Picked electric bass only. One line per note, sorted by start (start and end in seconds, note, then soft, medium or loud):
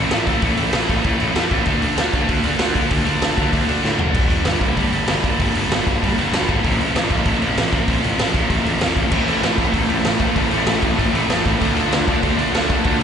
0.12 0.30 A1 medium
0.42 0.52 A1 medium
0.58 0.67 A1 medium
0.73 0.83 A1 medium
0.90 0.99 A1 medium
1.05 1.14 A1 medium
1.19 1.29 A1 medium
1.36 1.45 E2 medium
1.52 1.61 A1 medium
1.67 1.86 D2 medium
1.97 2.07 D2 medium
2.14 2.23 D2 medium
2.29 2.39 D2 medium
2.44 2.54 D2 medium
2.60 2.79 D2 medium
2.91 3.01 D2 medium
3.06 3.15 D2 medium
3.22 3.31 D2 medium
3.38 3.47 D2 medium
3.53 3.63 D2 medium
3.68 3.78 D2 medium
3.84 3.93 A2 medium
3.99 4.09 F#1 medium
4.14 4.33 G1 medium
4.45 4.55 G1 medium
4.61 4.71 G1 medium
4.77 4.87 G1 medium
4.92 5.02 G1 medium
5.09 5.28 G1 medium
5.40 5.49 G1 medium
5.54 5.64 G1 medium
5.70 5.80 G1 medium
5.87 5.96 G1 medium
6.03 6.12 G1 medium
6.17 6.27 G1 medium
6.33 6.42 D2 medium
6.49 6.58 G#1 medium
6.65 6.83 A1 loud
6.95 7.05 A1 medium
7.11 7.20 A1 medium
7.26 7.35 A1 medium
7.41 7.50 A1 medium
7.56 7.75 A1 medium
7.88 7.98 A1 medium
8.03 8.13 A1 medium
8.19 8.28 A1 medium
8.34 8.44 A1 medium
8.50 8.59 A1 medium
8.65 8.75 A1 medium
8.82 8.91 E2 medium
8.96 9.06 A1 medium
9.12 9.31 A1 medium
9.41 9.51 A1 medium
9.58 9.68 A1 medium
9.74 9.83 A1 medium
9.89 9.99 A1 medium
10.05 10.24 A1 medium
10.36 10.45 A1 medium
10.52 10.61 A1 medium
10.67 10.76 A1 medium
10.83 10.92 A1 medium
10.99 11.08 A1 medium
11.14 11.23 A1 medium
11.29 11.39 E2 medium
11.46 11.55 A1 medium
11.62 11.80 D2 loud
11.93 12.02 D2 medium
12.08 12.17 D2 medium
12.24 12.33 D2 medium
12.37 12.47 D2 medium
12.53 12.72 D2 medium
12.85 12.95 D2 medium
12.99 13.03 D2 medium